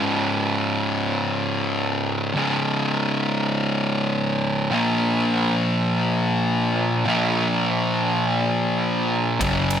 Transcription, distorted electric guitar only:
0, 0, Header, 1, 2, 480
1, 0, Start_track
1, 0, Tempo, 500000
1, 9408, End_track
2, 0, Start_track
2, 0, Title_t, "Distorted electric guitar"
2, 0, Program_c, 0, 30
2, 0, Note_on_c, 0, 37, 87
2, 4, Note_on_c, 0, 44, 94
2, 15, Note_on_c, 0, 49, 96
2, 2235, Note_off_c, 0, 37, 0
2, 2244, Note_off_c, 0, 44, 0
2, 2249, Note_off_c, 0, 49, 0
2, 2251, Note_on_c, 0, 37, 94
2, 2266, Note_on_c, 0, 44, 104
2, 2277, Note_on_c, 0, 49, 100
2, 4497, Note_off_c, 0, 37, 0
2, 4505, Note_off_c, 0, 44, 0
2, 4510, Note_off_c, 0, 49, 0
2, 4519, Note_on_c, 0, 46, 88
2, 4532, Note_on_c, 0, 53, 101
2, 4540, Note_on_c, 0, 58, 108
2, 6761, Note_off_c, 0, 46, 0
2, 6768, Note_off_c, 0, 53, 0
2, 6772, Note_off_c, 0, 58, 0
2, 6773, Note_on_c, 0, 46, 97
2, 6785, Note_on_c, 0, 53, 88
2, 6799, Note_on_c, 0, 58, 106
2, 9019, Note_off_c, 0, 46, 0
2, 9025, Note_off_c, 0, 53, 0
2, 9027, Note_on_c, 0, 42, 86
2, 9032, Note_off_c, 0, 58, 0
2, 9043, Note_on_c, 0, 49, 102
2, 9059, Note_on_c, 0, 54, 109
2, 9408, Note_off_c, 0, 42, 0
2, 9408, Note_off_c, 0, 49, 0
2, 9408, Note_off_c, 0, 54, 0
2, 9408, End_track
0, 0, End_of_file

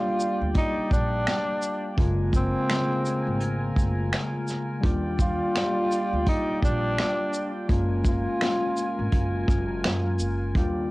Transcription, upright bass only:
0, 0, Header, 1, 3, 480
1, 0, Start_track
1, 0, Tempo, 714286
1, 1329, Time_signature, 4, 2, 24, 8
1, 7330, End_track
2, 0, Start_track
2, 0, Title_t, "Upright bass"
2, 0, Program_c, 0, 32
2, 277, Note_on_c, 0, 38, 83
2, 365, Note_off_c, 0, 38, 0
2, 614, Note_on_c, 0, 34, 81
2, 838, Note_off_c, 0, 34, 0
2, 1331, Note_on_c, 0, 30, 106
2, 1694, Note_off_c, 0, 30, 0
2, 2197, Note_on_c, 0, 32, 83
2, 2512, Note_off_c, 0, 32, 0
2, 2531, Note_on_c, 0, 30, 79
2, 2757, Note_off_c, 0, 30, 0
2, 3250, Note_on_c, 0, 39, 114
2, 3614, Note_off_c, 0, 39, 0
2, 4119, Note_on_c, 0, 38, 83
2, 4206, Note_off_c, 0, 38, 0
2, 4453, Note_on_c, 0, 34, 84
2, 4678, Note_off_c, 0, 34, 0
2, 5172, Note_on_c, 0, 30, 113
2, 5535, Note_off_c, 0, 30, 0
2, 6039, Note_on_c, 0, 32, 78
2, 6126, Note_off_c, 0, 32, 0
2, 6133, Note_on_c, 0, 30, 90
2, 6358, Note_off_c, 0, 30, 0
2, 6374, Note_on_c, 0, 30, 89
2, 6598, Note_off_c, 0, 30, 0
2, 6613, Note_on_c, 0, 42, 97
2, 6838, Note_off_c, 0, 42, 0
2, 6853, Note_on_c, 0, 30, 84
2, 7078, Note_off_c, 0, 30, 0
2, 7092, Note_on_c, 0, 39, 100
2, 7330, Note_off_c, 0, 39, 0
2, 7330, End_track
3, 0, Start_track
3, 0, Title_t, "Muted upright bass strokes"
3, 520, Note_on_c, 9, 29, 46
3, 587, Note_off_c, 9, 29, 0
3, 4360, Note_on_c, 9, 29, 48
3, 4427, Note_off_c, 9, 29, 0
3, 7330, End_track
0, 0, End_of_file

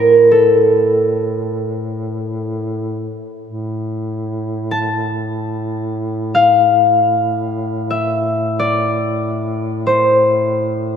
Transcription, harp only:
0, 0, Header, 1, 2, 480
1, 0, Start_track
1, 0, Tempo, 500000
1, 10526, End_track
2, 0, Start_track
2, 0, Title_t, "Harp"
2, 0, Program_c, 0, 46
2, 0, Note_on_c, 0, 70, 66
2, 0, Note_on_c, 0, 72, 63
2, 302, Note_on_c, 0, 69, 58
2, 360, Note_off_c, 0, 70, 0
2, 810, Note_off_c, 0, 72, 0
2, 3536, Note_off_c, 0, 69, 0
2, 4524, Note_on_c, 0, 81, 82
2, 6093, Note_on_c, 0, 77, 78
2, 6137, Note_off_c, 0, 81, 0
2, 7589, Note_on_c, 0, 76, 69
2, 7646, Note_off_c, 0, 77, 0
2, 8250, Note_on_c, 0, 74, 73
2, 9243, Note_off_c, 0, 76, 0
2, 9472, Note_on_c, 0, 72, 66
2, 10023, Note_off_c, 0, 74, 0
2, 10526, Note_off_c, 0, 72, 0
2, 10526, End_track
0, 0, End_of_file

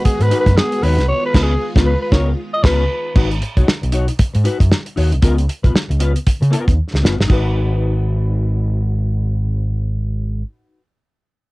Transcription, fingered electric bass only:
0, 0, Header, 1, 3, 480
1, 0, Start_track
1, 0, Tempo, 517688
1, 1004, Time_signature, 4, 2, 24, 8
1, 10679, End_track
2, 0, Start_track
2, 0, Title_t, "Fingered electric bass"
2, 0, Program_c, 0, 33
2, 188, Note_on_c, 0, 44, 105
2, 271, Note_off_c, 0, 44, 0
2, 428, Note_on_c, 0, 42, 99
2, 510, Note_off_c, 0, 42, 0
2, 768, Note_on_c, 0, 39, 94
2, 889, Note_off_c, 0, 39, 0
2, 908, Note_on_c, 0, 36, 92
2, 1004, Note_off_c, 0, 36, 0
2, 1247, Note_on_c, 0, 37, 127
2, 1417, Note_off_c, 0, 37, 0
2, 1631, Note_on_c, 0, 37, 104
2, 1785, Note_off_c, 0, 37, 0
2, 1967, Note_on_c, 0, 37, 105
2, 2137, Note_off_c, 0, 37, 0
2, 2447, Note_on_c, 0, 37, 112
2, 2616, Note_off_c, 0, 37, 0
2, 2929, Note_on_c, 0, 32, 109
2, 3131, Note_off_c, 0, 32, 0
2, 3311, Note_on_c, 0, 35, 88
2, 3391, Note_off_c, 0, 35, 0
2, 3551, Note_on_c, 0, 35, 95
2, 3754, Note_off_c, 0, 35, 0
2, 4034, Note_on_c, 0, 44, 110
2, 4113, Note_off_c, 0, 44, 0
2, 4270, Note_on_c, 0, 42, 98
2, 4350, Note_off_c, 0, 42, 0
2, 4610, Note_on_c, 0, 39, 91
2, 4730, Note_off_c, 0, 39, 0
2, 4752, Note_on_c, 0, 36, 96
2, 4831, Note_off_c, 0, 36, 0
2, 4846, Note_on_c, 0, 37, 117
2, 5049, Note_off_c, 0, 37, 0
2, 5232, Note_on_c, 0, 35, 85
2, 5312, Note_off_c, 0, 35, 0
2, 5471, Note_on_c, 0, 37, 93
2, 5675, Note_off_c, 0, 37, 0
2, 5951, Note_on_c, 0, 49, 97
2, 6032, Note_off_c, 0, 49, 0
2, 6193, Note_on_c, 0, 39, 84
2, 6273, Note_off_c, 0, 39, 0
2, 6430, Note_on_c, 0, 37, 79
2, 6511, Note_off_c, 0, 37, 0
2, 6526, Note_on_c, 0, 30, 79
2, 6649, Note_off_c, 0, 30, 0
2, 6670, Note_on_c, 0, 31, 79
2, 6752, Note_off_c, 0, 31, 0
2, 6766, Note_on_c, 0, 32, 99
2, 9659, Note_off_c, 0, 32, 0
2, 10679, End_track
3, 0, Start_track
3, 0, Title_t, "Muted fingered electric bass strokes"
3, 49, Note_on_c, 9, 29, 52
3, 142, Note_off_c, 9, 29, 0
3, 3411, Note_on_c, 9, 29, 50
3, 3503, Note_off_c, 9, 29, 0
3, 3888, Note_on_c, 9, 29, 49
3, 3981, Note_off_c, 9, 29, 0
3, 5324, Note_on_c, 9, 29, 46
3, 5417, Note_off_c, 9, 29, 0
3, 5813, Note_on_c, 9, 29, 43
3, 5906, Note_off_c, 9, 29, 0
3, 10679, End_track
0, 0, End_of_file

